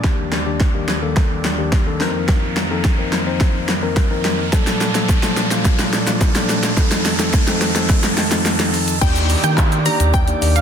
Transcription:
Already playing: riser
0.04 D#2 D#3 G3 A#3 D4 G4, kick, snare
0.32 snare
0.46 D#3 A#3 D4 G4
0.60 kick, snare
0.74 D#3 A#3 D4 G4
0.88 snare
1.02 D#3 A#3 D4 A4
1.17 kick, snare
1.45 snare
1.58 D#3 A#3 D4 G4
1.72 kick, snare
1.86 D#3 A#3 D4 A4
2.00 F2 D#3 F3 A#3 C4 D#4 A#4, snare
2.28 kick, snare
2.57 snare
2.70 F3 C4 D#4 A4
2.84 kick, snare
2.98 F3 C4 D#4 A#4
3.13 snare
3.26 F3 C4 D#4 C5
3.41 kick, snare
3.69 snare
3.82 F3 C4 D#4 A#4
3.97 kick, snare
4.10 F3 C4 D#4 A#4
4.25 snare
4.52 A#2 F3 A#3 D4 A4, kick, snare, shaker
4.67 snare, closed hi-hat, shaker
4.81 snare, shaker
4.95 F3 A#3 D4 A4, snare, closed hi-hat, shaker
5.09 kick, snare, shaker
5.23 F3 A#3 D4 A4, snare, closed hi-hat, shaker
5.37 snare, shaker
5.51 F3 A#3 D4 F4, snare, closed hi-hat, shaker
5.65 kick, snare, shaker
5.79 snare, closed hi-hat, shaker
5.93 snare, shaker
6.07 F3 A#3 D4 F4, snare, closed hi-hat, shaker
6.21 kick, snare, shaker
6.35 F3 A#3 D4 A4, snare, closed hi-hat, shaker
6.49 snare, shaker
6.63 snare, closed hi-hat, shaker
6.77 F2 D#3 F3 C4 D#4 A4, kick, snare, shaker
6.91 snare, closed hi-hat, shaker
7.05 snare, open hi-hat, shaker
7.19 F3 C4 D#4 A4, snare, closed hi-hat, shaker
7.33 kick, snare, shaker
7.47 F3 C4 D#4 A4, snare, closed hi-hat, shaker
7.61 snare, open hi-hat, shaker
7.75 F3 C4 D#4 A4, snare, closed hi-hat, shaker
7.89 kick, snare, shaker
8.03 snare, closed hi-hat, shaker
8.18 snare, open hi-hat, shaker
8.31 F3 C4 D#4 A4, snare, closed hi-hat, shaker
8.46 snare, shaker
8.59 F3 C4 D#4 A4, snare, closed hi-hat, shaker
8.74 open hi-hat, shaker
8.88 closed hi-hat, shaker
9.01 D#2 D#3 A#3 D4 D#4 G4 D5 G5, kick, crash, downlifter, shaker
9.16 closed hi-hat, shaker
9.30 open hi-hat, shaker
9.43 D#3 A#3 D4 D#4 G4 D5 G5, closed hi-hat, shaker
9.58 kick, clap, shaker
9.72 closed hi-hat, shaker
9.86 A#3 D4 D#4 G4 D5 A#5, open hi-hat, shaker
10.00 D#2, closed hi-hat, shaker
10.14 G5, kick, shaker
10.27 A#3 D4 D#4 G4 D5, closed hi-hat, shaker
10.41 D#2 A#3 D4 D#4 G4 D5, open hi-hat, shaker
10.56 F5, closed hi-hat, shaker

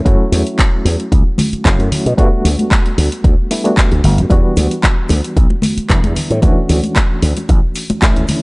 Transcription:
0.05 F#2 F#3 A3 C#4 E4 F#4, kick, closed hi-hat
0.32 E2, open hi-hat
0.47 closed hi-hat
0.59 kick, clap, closed hi-hat
0.85 E2, open hi-hat
1.00 closed hi-hat
1.12 C#2, kick, closed hi-hat
1.38 open hi-hat, high conga, low conga
1.53 muted slap bass stroke, closed hi-hat
1.65 F#1 F#3 A3 C#4 E4 F#4, kick, clap, closed hi-hat
1.79 F#2, closed hi-hat
1.91 muted slap bass stroke, open hi-hat, low conga
2.06 B2, closed hi-hat
2.17 G2 G3 A3 B3 D4 F#4, kick, closed hi-hat
2.45 D2, open hi-hat
2.59 closed hi-hat, high conga
2.71 kick, clap, closed hi-hat
2.86 closed hi-hat
2.98 D2, open hi-hat
3.12 closed hi-hat
3.24 D2, kick, closed hi-hat
3.51 G3 A3 B3 D4 E4, open hi-hat
3.64 G3 A3 B3 D4 F#4, closed hi-hat
3.77 kick, clap, closed hi-hat
3.92 D2, closed hi-hat
4.04 G1, open hi-hat, low conga
4.18 G2, closed hi-hat
4.30 E2 E3 G3 B3 D4 F#4, kick, closed hi-hat, shaker
4.57 D2, open hi-hat, muted conga, shaker
4.71 closed hi-hat, shaker
4.83 kick, clap, closed hi-hat, shaker
5.09 D2, open hi-hat, muted conga, shaker
5.24 closed hi-hat, shaker
5.37 B1, kick, closed hi-hat, shaker
5.50 muted conga
5.62 open hi-hat, high conga, low conga, shaker
5.77 muted slap bass stroke, closed hi-hat, shaker
5.89 E1 E3 G3 B3 D4 E4, kick, clap, closed hi-hat, shaker
6.04 E2, closed hi-hat, muted conga
6.16 muted slap bass stroke, open hi-hat, low conga, shaker
6.30 A2, closed hi-hat, shaker
6.42 D2 E3 A3 C#4 D4 F#4, kick, closed hi-hat, muted conga, shaker
6.69 D2, open hi-hat, shaker
6.83 closed hi-hat, high conga, shaker
6.96 kick, clap, closed hi-hat, muted conga, shaker
7.22 D2, open hi-hat, shaker
7.37 closed hi-hat, muted conga, shaker
7.49 A1, kick, closed hi-hat, shaker
7.75 open hi-hat, shaker
7.90 muted slap bass stroke, closed hi-hat, muted conga, shaker
8.02 A1 E3 A3 C#4 D4 E4, kick, clap, closed hi-hat, shaker
8.16 D2, closed hi-hat
8.28 muted slap bass stroke, open hi-hat, muted conga, low conga, shaker

